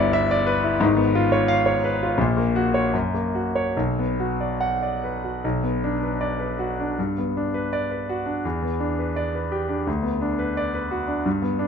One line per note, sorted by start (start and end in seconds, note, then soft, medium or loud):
0.00 0.77 G1 medium
0.00 0.77 G2 medium
0.00 0.84 B3 medium
0.00 0.64 E4 medium
0.00 0.25 D5 medium
0.13 0.41 E5 medium
0.31 0.58 D5 medium
0.47 0.74 B4 medium
0.64 0.81 E4 medium
0.80 2.14 G#1 medium
0.80 2.14 G#2 medium
0.97 1.24 B3 medium
1.15 1.42 F4 medium
1.32 1.59 C#5 medium
1.48 1.76 F5 medium
1.66 1.94 C#5 medium
1.84 2.12 B4 medium
2.03 2.20 F4 medium
2.18 2.90 A#1 medium
2.18 2.91 A#2 medium
2.37 2.66 A#3 medium
2.56 2.85 F#4 medium
2.74 2.93 C#5 medium
2.94 3.75 F#2 medium
3.14 3.47 A#3 soft
3.35 3.69 F#4 soft
3.56 3.77 C#5 medium
3.77 5.40 B1 medium
3.99 4.32 B3 soft
4.20 4.53 F#4 soft
4.41 4.73 D5 soft
4.61 4.94 F#5 medium
4.82 5.16 D5 soft
5.04 5.36 B4 soft
5.24 5.44 F#4 soft
5.44 6.94 B1 medium
5.63 5.94 B3 soft
5.84 6.14 D4 soft
6.03 6.33 B4 soft
6.21 6.51 D5 medium
6.40 6.70 B4 soft
6.59 6.90 F#4 soft
6.80 6.98 D4 soft
6.99 8.41 G2 soft
7.18 7.48 B3 soft
7.37 7.66 D4 soft
7.54 7.83 B4 soft
7.73 8.01 D5 medium
7.91 8.19 B4 soft
8.09 8.38 F#4 soft
8.26 8.44 D4 soft
8.45 9.83 E2 medium
8.63 8.91 B3 soft
8.80 9.09 D4 soft
8.99 9.27 B4 soft
9.16 9.45 D5 medium
9.35 9.63 B4 soft
9.52 9.80 G4 soft
9.69 9.87 D4 soft
9.87 11.22 D2 medium
10.03 10.32 B3 soft
10.21 10.50 D4 soft
10.39 10.67 B4 soft
10.57 10.85 D5 medium
10.74 11.02 B4 soft
10.91 11.19 F#4 soft
11.08 11.25 D4 soft
11.26 11.68 G2 medium
11.42 11.68 B3 soft
11.59 11.68 D4 medium